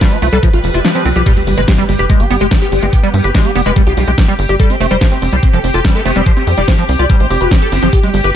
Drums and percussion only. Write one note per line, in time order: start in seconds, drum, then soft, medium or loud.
0.01 kick loud
0.01 snare loud
0.01 closed hi-hat medium
0.12 closed hi-hat medium
0.22 open hi-hat loud
0.33 closed hi-hat medium
0.43 kick loud
0.43 closed hi-hat medium
0.53 closed hi-hat medium
0.64 open hi-hat loud
0.74 closed hi-hat medium
0.85 snare loud
0.85 closed hi-hat medium
0.95 closed hi-hat medium
1.06 open hi-hat medium
1.16 closed hi-hat medium
1.26 kick loud
1.26 closed hi-hat medium
1.26 crash loud
1.37 closed hi-hat medium
1.47 open hi-hat loud
1.58 closed hi-hat medium
1.68 kick loud
1.68 snare loud
1.68 closed hi-hat medium
1.78 closed hi-hat medium
1.89 open hi-hat loud
1.99 closed hi-hat medium
2.10 kick loud
2.10 closed hi-hat medium
2.20 closed hi-hat medium
2.30 open hi-hat loud
2.41 closed hi-hat medium
2.51 kick loud
2.51 snare loud
2.51 closed hi-hat medium
2.62 closed hi-hat medium
2.72 open hi-hat loud
2.83 closed hi-hat medium
2.93 kick loud
2.93 closed hi-hat medium
3.03 closed hi-hat medium
3.14 open hi-hat loud
3.24 closed hi-hat medium
3.35 kick loud
3.35 snare loud
3.35 closed hi-hat medium
3.45 closed hi-hat medium
3.55 open hi-hat loud
3.66 closed hi-hat medium
3.76 kick loud
3.76 closed hi-hat medium
3.87 closed hi-hat medium
3.97 open hi-hat loud
4.08 closed hi-hat medium
4.18 kick loud
4.18 snare loud
4.18 closed hi-hat medium
4.28 closed hi-hat medium
4.39 open hi-hat loud
4.49 closed hi-hat medium
4.60 kick loud
4.60 closed hi-hat medium
4.70 closed hi-hat medium
4.80 open hi-hat loud
4.91 closed hi-hat medium
5.01 kick loud
5.01 snare loud
5.01 closed hi-hat medium
5.12 closed hi-hat medium
5.22 open hi-hat loud
5.33 closed hi-hat medium
5.43 kick loud
5.43 closed hi-hat medium
5.53 closed hi-hat medium
5.64 open hi-hat loud
5.74 closed hi-hat medium
5.85 kick loud
5.85 snare loud
5.85 closed hi-hat medium
5.95 closed hi-hat medium
6.05 open hi-hat loud
6.16 closed hi-hat medium
6.26 kick loud
6.26 closed hi-hat medium
6.37 closed hi-hat medium
6.47 open hi-hat loud
6.58 closed hi-hat medium
6.68 kick loud
6.68 snare loud
6.68 closed hi-hat medium
6.78 closed hi-hat medium
6.89 open hi-hat loud
6.99 closed hi-hat medium
7.10 kick loud
7.10 closed hi-hat medium
7.20 closed hi-hat medium
7.31 open hi-hat loud
7.41 closed hi-hat medium
7.51 kick loud
7.51 snare loud
7.51 closed hi-hat medium
7.62 closed hi-hat medium
7.72 open hi-hat loud
7.83 closed hi-hat medium
7.93 kick loud
7.93 closed hi-hat medium
8.03 closed hi-hat medium
8.14 open hi-hat loud
8.24 closed hi-hat medium